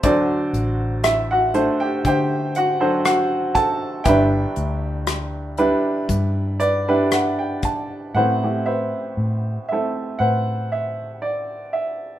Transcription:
0.03 0.42 D2 loud
0.03 4.01 D2 medium
0.03 4.02 D3 medium
0.03 1.43 F#3 medium
0.03 1.43 D4 medium
0.03 1.01 F#4 medium
0.03 1.42 A4 medium
0.03 1.43 C5 medium
0.03 1.07 D5 medium
0.03 kick medium
0.03 closed hi-hat medium
0.53 1.68 A1 medium
0.53 closed hi-hat medium
1.04 1.28 E4 medium
1.04 1.30 E5 medium
1.04 cross-stick medium
1.04 closed hi-hat medium
1.31 1.77 F#4 medium
1.31 1.82 F#5 medium
1.54 2.70 A3 medium
1.54 2.70 D4 medium
1.54 2.70 A4 medium
1.54 2.06 C5 medium
1.54 closed hi-hat soft
1.80 2.04 G4 medium
1.80 2.04 G5 medium
2.05 4.08 D3 medium
2.05 2.53 G4 medium
2.05 2.53 C5 medium
2.05 2.57 G5 loud
2.05 kick medium
2.05 closed hi-hat medium
2.55 3.03 F#4 medium
2.55 3.04 F#5 medium
2.55 closed hi-hat soft
2.80 3.96 F#3 medium
2.80 3.96 D4 medium
2.80 3.54 A4 medium
2.80 3.96 C5 medium
3.05 3.52 F#4 medium
3.05 3.57 F#5 medium
3.05 cross-stick medium
3.05 closed hi-hat medium
3.55 4.02 A4 medium
3.55 4.07 A5 medium
3.55 kick medium
3.55 closed hi-hat medium
4.04 4.44 G1 loud
4.04 8.12 G1 medium
4.04 8.12 G2 medium
4.04 5.47 G3 medium
4.04 5.47 D4 medium
4.04 5.47 E4 medium
4.04 7.08 G4 medium
4.04 4.07 B4 medium
4.04 7.08 E5 medium
4.04 7.07 G5 medium
4.04 kick medium
4.04 closed hi-hat medium
4.08 5.47 B4 medium
4.56 5.73 D2 medium
4.56 closed hi-hat medium
5.07 cross-stick medium
5.07 closed hi-hat medium
5.57 6.76 G3 medium
5.57 6.76 D4 medium
5.57 6.76 E4 medium
5.57 6.59 B4 medium
5.57 closed hi-hat soft
6.09 7.66 G2 medium
6.09 kick medium
6.09 closed hi-hat medium
6.60 6.87 B4 medium
6.60 8.19 D5 medium
6.60 closed hi-hat medium
6.88 8.06 G3 medium
6.88 8.06 D4 medium
6.88 8.06 E4 medium
6.88 8.06 B4 medium
7.11 7.36 F#5 medium
7.11 cross-stick medium
7.11 closed hi-hat medium
7.39 7.62 G5 medium
7.63 8.12 A5 medium
7.63 kick medium
7.63 closed hi-hat medium
8.14 12.19 A1 soft
8.14 8.93 A2 medium
8.14 12.19 A2 soft
8.14 8.39 A3 medium
8.14 8.40 C4 soft
8.14 8.40 E4 soft
8.14 8.66 B4 medium
8.14 8.65 C5 medium
8.14 8.68 F#5 medium
8.43 9.61 A3 medium
8.43 9.61 C4 soft
8.43 9.61 E4 soft
8.43 9.61 G4 medium
8.66 10.19 B4 medium
8.66 10.19 C5 medium
8.66 9.67 E5 medium
9.17 9.57 A2 medium
9.69 11.60 A3 medium
9.69 11.60 C4 medium
9.69 11.60 E4 medium
9.69 10.22 E5 medium
9.73 11.61 A4 medium
10.19 11.77 A2 medium
10.19 12.19 B4 medium
10.19 12.19 C5 medium
10.19 10.73 F#5 medium
10.72 11.25 E5 medium
11.22 11.76 D5 medium
11.73 12.19 E5 medium

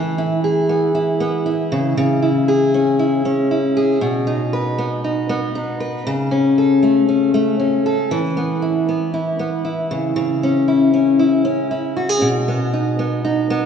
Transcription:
0.00 3.43 E3 medium
0.00 0.18 E4 medium
0.18 0.94 E4 medium
0.44 2.48 G#4 medium
0.69 1.19 B3 medium
0.95 1.45 E4 medium
1.20 1.76 B3 medium
1.46 2.22 E4 medium
1.72 1.96 C#3 medium
1.97 4.01 C#3 medium
2.22 2.98 E4 medium
2.48 3.75 G#4 medium
2.74 3.24 C#4 medium
2.99 3.50 E4 medium
3.25 4.07 C#4 medium
3.51 4.07 E4 medium
3.77 4.07 G#4 medium
4.01 6.06 B2 medium
4.27 5.03 D#4 medium
4.53 5.79 B4 medium
4.78 5.28 B3 medium
5.04 5.54 D#4 medium
5.29 6.11 B3 medium
5.55 6.12 D#4 medium
5.80 6.11 B4 medium
6.07 8.11 C#3 medium
6.31 7.07 C#4 medium
6.58 7.85 A4 medium
6.83 7.33 A3 medium
7.09 7.58 C#4 medium
7.34 8.16 A3 medium
7.60 8.16 C#4 medium
7.86 8.17 A4 medium
8.11 11.61 E3 medium
8.37 8.87 B3 medium
8.62 9.13 E4 medium
8.89 9.38 B3 medium
9.14 9.64 E4 medium
9.39 9.96 B3 medium
9.65 10.68 E4 medium
9.91 10.15 C#3 medium
10.16 12.21 C#3 medium
10.43 10.92 C#4 medium
10.68 11.18 E4 medium
10.94 11.44 C#4 medium
11.19 11.70 E4 medium
11.45 12.27 C#4 medium
11.71 12.27 E4 medium
11.97 12.09 F#4 medium
12.09 12.27 G#4 medium
12.21 13.66 B2 medium
12.48 12.98 B3 medium
12.73 13.23 D#4 medium
12.99 13.49 B3 medium
13.25 13.66 D#4 medium
13.50 13.66 B3 medium

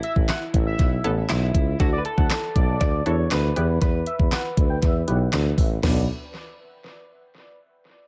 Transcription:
0.00 0.34 B3 medium
0.00 0.34 C#4 medium
0.00 0.34 E4 medium
0.00 1.29 E4 medium
0.00 0.34 A4 medium
0.00 0.13 E5 medium
0.00 closed hi-hat medium
0.16 0.26 A1 loud
0.16 kick medium
0.28 0.38 F#5 medium
0.28 snare loud
0.28 clap loud
0.28 closed hi-hat medium
0.54 0.74 A1 loud
0.54 kick medium
0.54 closed hi-hat medium
0.67 1.02 E5 medium
0.79 0.99 B1 medium
0.79 kick loud
0.79 closed hi-hat medium
1.04 1.24 A1 medium
1.04 1.48 B3 medium
1.04 1.49 C#4 medium
1.04 1.49 E4 medium
1.04 1.49 A4 medium
1.04 closed hi-hat medium
1.29 1.50 B1 medium
1.29 1.80 E4 medium
1.29 snare loud
1.29 clap loud
1.29 closed hi-hat medium
1.54 1.75 C#2 medium
1.54 kick medium
1.54 closed hi-hat medium
1.80 2.00 D2 loud
1.80 2.39 D4 medium
1.80 2.39 E4 medium
1.80 2.39 F#4 medium
1.80 1.99 F#4 loud
1.80 2.39 A4 medium
1.80 kick loud
1.80 closed hi-hat medium
1.93 2.02 D5 medium
1.98 2.05 B4 medium
2.05 2.81 A4 loud
2.05 closed hi-hat medium
2.18 2.28 D2 loud
2.18 2.27 F#5 medium
2.18 kick medium
2.30 snare loud
2.30 clap loud
2.30 closed hi-hat medium
2.55 2.76 B1 loud
2.55 3.03 D5 medium
2.55 kick medium
2.55 closed hi-hat medium
2.81 3.01 D2 loud
2.81 3.04 D5 loud
2.81 kick loud
2.81 closed hi-hat medium
3.06 3.26 E2 loud
3.06 3.50 D4 medium
3.06 3.50 E4 medium
3.06 3.50 F#4 medium
3.06 3.50 A4 medium
3.06 3.31 C#5 loud
3.06 closed hi-hat medium
3.31 3.51 D2 medium
3.31 3.81 B4 loud
3.31 snare loud
3.31 clap loud
3.31 closed hi-hat loud
3.56 3.77 E2 loud
3.56 4.37 B3 medium
3.56 4.37 E4 medium
3.56 4.37 G4 medium
3.56 4.37 B4 medium
3.56 closed hi-hat medium
3.82 4.02 E2 loud
3.82 5.29 B4 loud
3.82 kick loud
3.82 closed hi-hat medium
4.06 4.16 E5 medium
4.06 closed hi-hat medium
4.19 4.29 E2 medium
4.19 kick medium
4.32 4.41 F#5 medium
4.32 snare loud
4.32 clap loud
4.32 closed hi-hat medium
4.57 4.77 D2 loud
4.57 kick loud
4.57 closed hi-hat medium
4.70 4.79 G5 medium
4.82 5.03 E2 medium
4.82 5.00 E5 medium
4.82 kick loud
4.82 closed hi-hat medium
5.07 5.28 B1 medium
5.07 5.52 B3 medium
5.07 5.52 E4 medium
5.07 5.52 G4 medium
5.07 5.52 B4 medium
5.07 5.17 F#5 medium
5.07 closed hi-hat medium
5.33 5.53 D2 loud
5.33 snare loud
5.33 clap loud
5.33 closed hi-hat loud
5.58 5.78 A1 medium
5.58 5.67 E5 medium
5.58 kick loud
5.58 open hi-hat medium
5.83 6.07 B1 medium
5.83 6.07 B3 medium
5.83 6.07 D4 medium
5.83 6.07 F#4 medium
5.83 6.07 A4 medium
5.83 6.07 B4 medium
5.83 6.07 D5 medium
5.83 snare loud
5.83 floor tom loud
5.83 crash medium

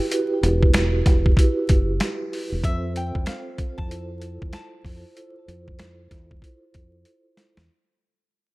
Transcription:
0.09 1.29 E4 medium
0.09 1.29 F#4 loud
0.09 1.30 G4 medium
0.09 1.30 B4 loud
0.09 closed hi-hat loud
0.43 1.02 E1 loud
0.43 closed hi-hat medium
0.63 kick loud
0.74 snare loud
0.74 closed hi-hat medium
1.06 1.35 E1 medium
1.06 kick loud
1.06 snare soft
1.06 closed hi-hat medium
1.26 kick loud
1.37 2.56 E4 loud
1.37 2.56 F#4 medium
1.37 2.57 G4 medium
1.37 2.57 B4 loud
1.37 kick loud
1.37 closed hi-hat loud
1.69 1.98 F#1 medium
1.69 kick loud
1.69 closed hi-hat medium
2.00 snare loud
2.00 closed hi-hat medium
2.33 open hi-hat medium
2.52 2.63 E1 medium
2.64 3.11 F2 loud
2.64 3.83 C4 loud
2.64 3.83 F4 medium
2.64 3.83 A4 loud
2.64 3.84 C5 loud
2.64 2.93 E5 loud
2.64 kick loud
2.64 closed hi-hat loud
2.96 3.25 G5 medium
2.96 closed hi-hat medium
3.15 3.26 E2 medium
3.15 kick loud
3.26 3.75 F5 medium
3.26 snare loud
3.26 snare medium
3.26 closed hi-hat medium
3.58 kick loud
3.58 closed hi-hat medium
3.78 4.37 F2 medium
3.78 4.06 A5 medium
3.78 kick loud
3.87 4.77 E4 loud
3.87 4.78 F4 medium
3.87 4.78 A4 medium
3.87 4.79 C5 loud
3.91 closed hi-hat loud
4.21 closed hi-hat medium
4.42 4.52 E2 medium
4.42 kick loud
4.53 4.82 A5 medium
4.53 snare loud
4.53 closed hi-hat medium
4.85 5.03 F2 medium
4.85 5.14 E4 medium
4.85 5.15 F4 medium
4.85 5.15 A4 medium
4.85 5.16 C5 medium
4.85 kick medium
4.85 open hi-hat soft
5.15 6.35 E4 loud
5.15 6.35 F4 medium
5.15 6.36 A4 medium
5.15 6.36 C5 loud
5.15 closed hi-hat loud
5.48 6.07 F2 loud
5.48 closed hi-hat medium
5.68 kick loud
5.79 snare loud
5.79 closed hi-hat medium
6.11 6.40 E2 medium
6.11 kick loud
6.11 snare soft
6.11 closed hi-hat medium
6.31 kick loud
6.42 7.61 E4 loud
6.42 7.62 F4 medium
6.42 7.62 A4 medium
6.42 7.62 C5 loud
6.42 kick loud
6.42 closed hi-hat loud
6.74 7.03 F2 medium
6.74 kick loud
6.74 closed hi-hat medium
7.05 closed hi-hat medium
7.37 snare loud
7.37 closed hi-hat medium
7.57 7.68 E2 medium
7.57 snare medium

